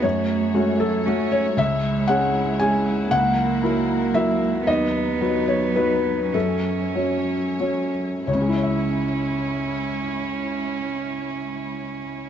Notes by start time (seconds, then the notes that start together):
Already playing: F#4
0.02 F#2 A3 C#5
0.54 G#3 A3 C#4 F#4
0.80 F#3 A4
1.06 A3 C#4 F#4
1.32 C#5
1.57 C#2 G#3 E4 E5
2.08 G#3 C#4 G#4 F#5
2.60 G#3 C#4 G#4 G#5
3.11 C#2 F#3 A#3 A#4 F#5
3.63 F#3 E4 A#4
4.14 F#3 E4 A#4 E5
4.66 D#2 B3 D#4 B4 D#5
5.21 F#3 D#4 B4
5.48 C#5
5.76 F#3 D#4 B4
6.32 F#2 C#4 A4 C#5
6.95 F#3 C#4 C#5
7.60 F#3 C#4 C#5
8.27 C#2 G#3 C#4 E4 C#5
8.35 C#3
8.42 G#3
8.48 E4
8.55 C#5
8.63 E5